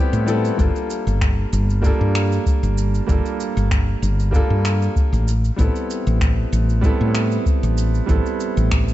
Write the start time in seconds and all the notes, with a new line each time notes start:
Already playing: G3 B3 C4 E4 G4 A4
0.13 A2, shaker
0.26 G3 B3 C4 E4 A4, shaker
0.45 shaker
0.57 G1 G3 A#3 D4 F4, kick, shaker
0.61 A4
0.76 shaker
0.90 shaker
1.07 G1, shaker
1.21 finger snap, kick, shaker
1.53 G1, shaker
1.70 shaker
1.82 G3 A#3 D4 F4, kick, shaker
1.86 A4
2.01 G2
2.15 finger snap, shaker
2.32 shaker
2.46 kick, shaker
2.63 G1, shaker
2.78 shaker
2.95 shaker
3.07 G1 G3 A#3 D4 F4, kick, shaker
3.11 A4
3.26 shaker
3.40 shaker
3.57 G1, shaker
3.71 finger snap, kick, shaker
4.02 G1, shaker
4.20 shaker
4.31 G3 A#3 D4 F4, kick, shaker
4.36 A4
4.50 G2
4.65 finger snap, shaker
4.82 shaker
4.96 kick, shaker
5.13 A1, shaker
5.28 shaker
5.44 shaker
5.56 A1 G3 B3 C4 E4, kick, shaker
5.61 A4
5.76 shaker
5.90 shaker
6.07 A1, shaker
6.21 finger snap, kick, shaker
6.53 A1, shaker
6.69 shaker
6.81 G3 B3 C4 E4, kick, shaker
6.86 A4
7.01 A2
7.15 finger snap, shaker
7.32 shaker
7.46 kick, shaker
7.63 A1, shaker
7.78 shaker
7.94 shaker
8.06 A1 G3 B3 C4 E4, kick, shaker
8.11 A4
8.26 shaker
8.40 shaker
8.57 A1, shaker
8.71 finger snap, kick, shaker
8.88 shaker